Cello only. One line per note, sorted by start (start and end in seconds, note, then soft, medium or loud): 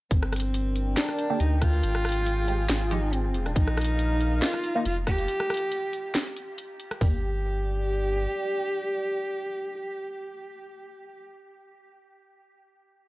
0.11 0.98 C4 loud
0.97 1.42 D4 loud
1.40 1.63 D#4 loud
1.62 2.93 F4 loud
2.91 3.14 D#4 loud
3.13 3.48 C4 loud
3.46 3.56 D4 loud
3.56 4.44 D#4 loud
4.43 4.78 F4 loud
4.76 4.85 D#4 loud
4.86 4.96 F4 loud
5.08 6.54 G4 loud
7.01 11.23 G4 loud